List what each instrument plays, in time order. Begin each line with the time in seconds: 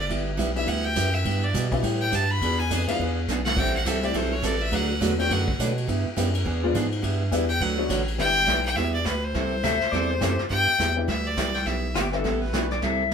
0.00 fiddle D5
0.09 sub bass G1, steel-string acoustic guitar G3 B3 E4 G4, kick, ride
0.37 sub bass B1, steel-string acoustic guitar G3 B3 E4 G4, kick, hi-hat pedal, ride
0.56 honky-tonk piano E3 G3 B3 D4 E4, fiddle E5, ride
0.66 sub bass D2, steel-string acoustic guitar G3 B3 E4 G4, fiddle F#5, kick, ride
0.85 fiddle G5
0.96 sub bass F#2, steel-string acoustic guitar G3 B3 E4 G4, kick, hi-hat pedal, ride
1.14 fiddle E5
1.25 sub bass G2, steel-string acoustic guitar G3 B3 E4 G4, kick, ride
1.44 fiddle D5
1.54 sub bass B2, steel-string acoustic guitar G3 B3 E4 G4, kick, hi-hat pedal, ride
1.72 honky-tonk piano E3 G3 B3 D4 E4, kick, ride
1.83 sub bass A2, steel-string acoustic guitar G3 B3 E4 G4, kick, ride
2.01 fiddle G5
2.12 sub bass G2, steel-string acoustic guitar G3 B3 E4 G4, fiddle A5, kick, hi-hat pedal, ride
2.31 fiddle B5
2.41 sub bass E2, steel-string acoustic guitar E3 B3 D4 G#4, kick, ride
2.59 fiddle G#5
2.70 sub bass F2, steel-string acoustic guitar E3 B3 D4 G#4, kick, hi-hat pedal, ride
2.87 sub bass F2, honky-tonk piano F3 G#3 B3 D4 E4, fiddle F5, ride
2.99 sub bass E2, steel-string acoustic guitar E3 B3 D4 G#4, kick
3.28 sub bass B1, steel-string acoustic guitar E3 B3 D4 G#4, snare, hi-hat pedal
3.45 fiddle F#5, snare
3.57 sub bass A1, steel-string acoustic guitar E3 G3 C4 E4 A4, fiddle G5, kick, crash
3.76 fiddle F#5
3.85 sub bass C2, steel-string acoustic guitar E3 G3 C4 E4 A4, fiddle E5, kick, hi-hat pedal, ride
4.02 honky-tonk piano G3 A3 C4 E4 G4, fiddle D5, ride
4.14 sub bass B1, steel-string acoustic guitar E3 G3 C4 E4 A4, fiddle C5, kick, ride
4.33 fiddle C#5
4.42 sub bass A1, steel-string acoustic guitar E3 G3 C4 E4 A4, fiddle D5, kick, hi-hat pedal, ride
4.61 fiddle E5
4.72 sub bass D2, steel-string acoustic guitar D3 F#3 A3 D4 F#4 B4, fiddle F#5, kick, ride
5.00 sub bass E2, steel-string acoustic guitar D3 F#3 A3 D4 F#4 B4, kick, hi-hat pedal, ride
5.18 honky-tonk piano F#3 A3 B3 D4 F#4, fiddle G5, ride
5.30 sub bass F#2, steel-string acoustic guitar D3 F#3 A3 D4 F#4 B4, fiddle F#5, kick, ride
5.48 sub bass F#2, kick
5.59 sub bass B2, steel-string acoustic guitar D3 F#3 A3 D4 F#4 B4, kick, hi-hat pedal, ride
5.77 ride
5.87 sub bass G2, steel-string acoustic guitar G3 B3 E4 G4, kick, ride
6.06 sub bass G2
6.17 sub bass F#2, honky-tonk piano E3 G3 B3 D4 E4, steel-string acoustic guitar G3 B3 E4 G4, kick, hi-hat pedal, ride
6.34 ride
6.45 sub bass E2, steel-string acoustic guitar E3 B3 D4 G#4, kick
6.63 honky-tonk piano F3 G#3 B3 D4 F4
6.74 sub bass G#2, steel-string acoustic guitar E3 B3 D4 G#4, kick, hi-hat pedal, ride
6.92 ride
7.02 sub bass G2, steel-string acoustic guitar G3 B3 E4 G4, kick, ride
7.31 sub bass E2, honky-tonk piano E3 G3 B3 D4 E4, steel-string acoustic guitar G3 B3 E4 G4, kick, hi-hat pedal, ride
7.49 fiddle G5, ride
7.61 sub bass D2, steel-string acoustic guitar D3 F#3 A3 D4 F#4 B4, fiddle F#5, kick, ride
7.78 honky-tonk piano F#3 A3 B3 D4 F#4
7.89 sub bass A1, steel-string acoustic guitar D3 F#3 A3 D4 F#4 B4, kick, hi-hat pedal, ride
8.08 ride
8.18 sub bass G1, honky-tonk piano E3 G3 B3 D4 E4, steel-string acoustic guitar G3 B3 E4 G4, fiddle G5, brush sweep, kick, snare
8.46 sub bass B1, steel-string acoustic guitar G3 B3 E4 G4, kick, snare, hi-hat pedal
8.65 fiddle G5
8.76 sub bass E2, steel-string acoustic guitar G3 B3 E4 G4, fiddle E5, brush sweep, kick, snare
8.94 fiddle D5
9.04 sub bass D2, steel-string acoustic guitar G3 B3 E4 G4, fiddle B4, kick, snare, hi-hat pedal
9.24 fiddle C5
9.34 sub bass C2, steel-string acoustic guitar C3 E3 G3 C4 E4 A4, brush sweep, kick, snare
9.63 sub bass D2, steel-string acoustic guitar C3 E3 G3 C4 E4 A4, pedal steel guitar E5, kick, snare, hi-hat pedal
9.81 sub bass D2, snare
9.92 sub bass E2, steel-string acoustic guitar C3 E3 G3 C4 E4 A4, pedal steel guitar D5, brush sweep, kick, snare
10.11 pedal steel guitar C5
10.21 sub bass F#2, steel-string acoustic guitar C3 E3 G3 C4 E4 A4, honky-tonk piano E3 G3 A3 C4 E4, pedal steel guitar G4, kick, snare, hi-hat pedal
10.39 sub bass F#2, snare
10.50 sub bass G2, steel-string acoustic guitar G3 B3 E4 G4, fiddle G5, brush sweep, kick, snare
10.68 sub bass G2
10.78 sub bass E2, steel-string acoustic guitar G3 B3 E4 G4, kick, snare, hi-hat pedal
10.96 honky-tonk piano E3 G3 B3 D4 E4
11.08 sub bass D2, steel-string acoustic guitar G3 B3 E4 G4, fiddle E5, brush sweep, kick, snare
11.27 fiddle D5
11.37 sub bass C2, steel-string acoustic guitar G3 B3 E4 G4, kick, snare, hi-hat pedal
11.55 fiddle G5, snare
11.66 sub bass B1, steel-string acoustic guitar G3 B3 E4 G4, fiddle E5, brush sweep, kick, snare
11.95 sub bass G1, steel-string acoustic guitar G3 B3 E4 G4, pedal steel guitar G4, kick, snare, hi-hat pedal
12.12 honky-tonk piano E3 G3 B3 D4 E4, pedal steel guitar A4, snare
12.24 sub bass A1, steel-string acoustic guitar G3 B3 E4 G4, brush sweep, kick, snare
12.42 pedal steel guitar B4
12.53 sub bass B1, honky-tonk piano E3 G3 B3 D4 F#4, steel-string acoustic guitar G3 B3 E4 G4, kick, snare, hi-hat pedal
12.71 pedal steel guitar D5, snare
12.82 sub bass C2, steel-string acoustic guitar C3 E3 G3 C4 E4 A4, pedal steel guitar E5, brush sweep, kick, snare